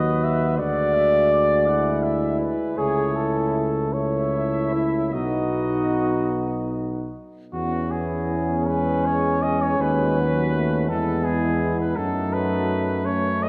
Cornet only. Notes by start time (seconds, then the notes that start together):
Already playing: B4
0.59 F#5
0.94 E5
1.31 D5
1.67 F#5
2.03 E5
2.40 B4
2.77 C#5
3.93 E5
5.13 D#5
7.53 F#4
7.91 G#4
8.67 B4
9.05 C#5
9.42 D#5
9.62 C#5
9.81 B4
10.88 A4
11.24 G#4
11.80 B4
11.96 A4
12.33 B4
13.05 C#5
13.43 D#5